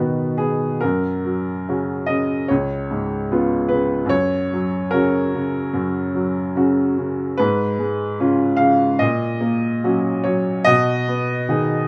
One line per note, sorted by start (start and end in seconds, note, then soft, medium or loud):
0.00 0.78 B2 soft
0.00 0.84 D#3 soft
0.00 0.40 B3 soft
0.00 0.85 F#4 soft
0.00 0.85 B4 medium
0.38 0.83 B3 soft
0.38 0.82 G#4 medium
0.81 2.45 F#2 medium
0.81 2.07 A#4 medium
1.25 1.91 F#3 soft
1.68 2.04 C#3 soft
1.68 2.05 C#4 soft
1.68 2.05 F#4 soft
2.06 2.49 C#3 soft
2.06 2.48 D#5 medium
2.48 4.08 C#2 medium
2.48 3.71 C#5 medium
2.91 3.56 G#2 soft
3.31 3.67 C#3 soft
3.31 3.68 B3 soft
3.31 3.68 F4 soft
3.69 4.11 C#3 soft
3.69 4.10 B4 medium
4.06 5.66 F#2 medium
4.06 4.91 C#5 medium
4.53 5.17 F#3 soft
4.91 5.29 C#3 soft
4.91 5.29 C#4 soft
4.91 5.29 F#4 medium
4.91 6.54 A#4 medium
5.34 5.98 C#3 soft
5.73 7.35 F#2 medium
6.15 6.81 F#3 soft
6.56 6.93 C#3 soft
6.56 6.93 C#4 soft
6.56 6.94 F#4 soft
6.97 7.39 C#3 soft
7.37 8.98 G#2 medium
7.37 8.60 B4 medium
7.79 8.44 G#3 soft
8.20 8.56 C#3 soft
8.20 8.56 C#4 soft
8.20 8.57 F4 medium
8.57 9.01 C#3 soft
8.57 9.00 F5 medium
8.99 10.63 A#2 medium
8.99 10.25 D#5 medium
9.41 10.08 A#3 soft
9.84 10.22 F#3 soft
9.84 10.22 C#4 soft
9.84 10.22 F#4 medium
10.24 10.67 F#3 soft
10.24 10.66 C#5 medium
10.64 11.88 B2 medium
10.64 11.88 D#5 loud
11.08 11.75 B3 soft
11.49 11.87 D#3 soft
11.49 11.88 D#4 soft
11.49 11.88 G#4 soft